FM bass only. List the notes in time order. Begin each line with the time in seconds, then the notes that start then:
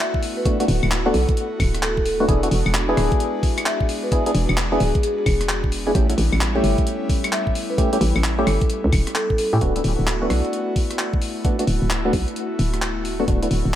0.68 D1
0.83 D1
1.14 B1
1.60 D1
2.28 E1
2.51 E1
2.66 E1
2.97 D1
4.35 E1
4.49 E1
4.80 D1
5.26 E1
5.95 A1
6.18 A1
6.32 A1
6.64 G1
8.01 A1
8.16 A1
8.47 G1
8.84 C#2
8.93 E1
9.53 A2
9.61 D1
9.84 D1
9.99 D1
10.30 B1
11.67 D1
11.82 D1
12.13 B1
12.59 D1
13.28 D1
13.51 D1
13.65 D1